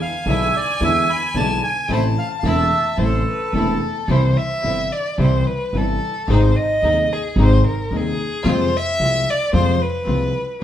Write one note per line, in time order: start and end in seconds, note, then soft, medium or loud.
0.00 0.27 F5 medium
0.00 1.93 G#5 loud
0.26 0.50 B1 medium
0.26 0.50 B2 medium
0.26 0.50 D3 medium
0.26 0.50 G#3 medium
0.26 0.50 B3 medium
0.26 0.50 D4 medium
0.26 0.50 E4 medium
0.26 0.51 E4 medium
0.26 0.56 E5 medium
0.56 0.83 D5 medium
0.81 1.04 E2 medium
0.81 1.04 D3 medium
0.81 1.04 E3 medium
0.81 1.04 G#3 medium
0.81 1.05 G#3 medium
0.81 1.04 B3 medium
0.81 1.05 D4 medium
0.81 1.05 E4 medium
0.81 1.11 E5 medium
1.10 1.37 B5 medium
1.34 1.58 B1 medium
1.34 1.58 B2 medium
1.34 1.58 D3 medium
1.34 1.58 G#3 medium
1.34 1.59 G#3 medium
1.34 1.58 B3 medium
1.34 1.59 D4 medium
1.34 1.58 E4 medium
1.34 1.59 E4 medium
1.34 1.62 A5 medium
1.64 1.92 G#5 medium
1.88 2.13 A1 medium
1.88 2.12 A2 medium
1.88 2.12 C3 medium
1.88 2.13 E3 medium
1.88 2.12 A3 medium
1.88 2.13 A3 medium
1.88 2.13 C4 medium
1.88 2.13 E4 medium
1.88 3.00 A5 medium
1.92 2.04 C5 medium
2.19 2.28 F5 medium
2.39 2.67 E1 medium
2.39 2.67 C3 medium
2.39 2.67 E3 medium
2.39 2.67 A3 medium
2.39 2.67 E4 medium
2.39 2.46 F5 medium
2.43 2.67 E2 medium
2.43 2.67 A3 medium
2.43 2.68 C4 medium
2.43 2.68 E4 medium
2.49 2.98 E5 medium
2.98 3.22 A1 medium
2.98 3.22 A2 medium
2.98 3.22 C3 medium
2.98 3.22 E3 medium
2.98 3.22 A3 medium
2.98 3.23 C4 medium
2.98 3.23 E4 medium
2.98 3.27 C5 medium
3.04 3.81 A4 medium
3.28 3.56 B4 medium
3.53 3.77 E1 medium
3.53 3.78 E1 medium
3.53 3.78 E2 medium
3.53 3.78 C3 medium
3.53 3.77 E3 medium
3.53 3.77 A3 medium
3.53 3.78 A3 medium
3.53 3.78 C4 medium
3.53 3.78 E4 medium
3.53 4.13 A4 medium
4.08 4.32 C2 medium
4.08 4.33 C2 medium
4.08 4.33 C3 medium
4.08 4.33 E3 medium
4.08 4.32 G3 medium
4.08 4.33 G3 medium
4.08 4.32 C4 medium
4.08 4.32 E4 medium
4.08 4.33 E4 medium
4.08 4.39 C5 medium
4.37 4.94 E5 loud
4.63 4.87 G1 medium
4.63 4.87 G2 soft
4.63 4.87 C3 soft
4.63 4.87 E3 soft
4.63 4.87 G3 soft
4.63 4.87 C4 soft
4.63 4.87 E4 soft
4.63 4.88 E4 soft
4.92 5.19 D5 medium
5.18 5.42 C2 medium
5.18 5.42 C3 medium
5.18 5.42 E3 medium
5.18 5.42 G3 medium
5.18 5.42 C4 medium
5.18 5.42 E4 medium
5.18 5.48 C5 medium
5.47 5.79 B4 medium
5.73 5.97 G1 medium
5.73 5.97 G1 soft
5.73 5.97 G2 medium
5.73 5.97 C3 soft
5.73 5.97 E3 soft
5.73 5.97 G3 soft
5.73 5.97 C4 soft
5.73 5.97 E4 soft
5.78 6.32 A4 medium
6.28 6.51 G#1 medium
6.28 6.52 G#1 medium
6.28 6.52 G#2 medium
6.28 6.52 C3 medium
6.28 6.52 D#3 medium
6.28 6.51 G#3 medium
6.28 6.52 G#3 medium
6.28 6.51 C4 medium
6.28 6.51 D#4 medium
6.28 6.52 D#4 medium
6.28 6.58 C5 medium
6.56 7.14 D#5 loud
6.82 7.06 D#1 medium
6.82 7.06 D#2 medium
6.82 7.06 D#2 soft
6.82 7.06 C3 soft
6.82 7.06 D#3 soft
6.82 7.06 G#3 medium
6.82 7.06 G#3 soft
6.82 7.06 C4 soft
6.82 7.06 D#4 medium
6.82 7.06 D#4 soft
7.13 7.39 G#4 medium
7.36 7.60 G#1 medium
7.36 7.61 G#1 medium
7.36 7.61 G#2 medium
7.36 7.61 C3 medium
7.36 7.61 D#3 medium
7.36 7.60 G#3 medium
7.36 7.61 G#3 medium
7.36 7.60 C4 medium
7.36 7.60 D#4 medium
7.36 7.61 D#4 medium
7.42 7.65 C5 medium
7.67 7.98 A#4 medium
7.91 8.15 D#1 medium
7.91 8.14 D#2 medium
7.91 8.15 D#2 medium
7.91 8.15 C3 soft
7.91 8.15 D#3 soft
7.91 8.14 G#3 soft
7.91 8.15 G#3 soft
7.91 8.14 C4 soft
7.91 8.14 D#4 medium
7.91 8.15 D#4 medium
7.96 8.51 G#4 medium
8.44 8.68 F2 medium
8.44 8.68 C3 medium
8.44 8.68 F3 medium
8.44 8.68 G#3 medium
8.44 8.68 C4 medium
8.44 8.68 F4 medium
8.44 8.69 F4 medium
8.50 8.78 C5 medium
8.77 9.31 E5 loud
9.00 9.23 C2 medium
9.00 9.23 C3 soft
9.00 9.23 F3 soft
9.00 9.23 G#3 soft
9.00 9.23 C4 soft
9.00 9.23 F4 medium
9.00 9.23 F4 soft
9.30 9.54 D5 loud
9.53 9.76 F2 medium
9.53 9.76 C3 medium
9.53 9.77 F3 medium
9.53 9.76 G#3 medium
9.53 9.77 G#3 medium
9.53 9.77 C4 medium
9.53 9.77 F4 medium
9.53 9.84 C5 medium
9.82 10.63 B4 medium
10.07 10.30 C2 medium
10.07 10.31 C2 medium
10.07 10.31 C3 medium
10.07 10.31 F3 soft
10.07 10.31 G#3 soft
10.07 10.32 G#3 soft
10.07 10.30 C4 soft
10.07 10.31 F4 medium
10.07 10.32 F4 soft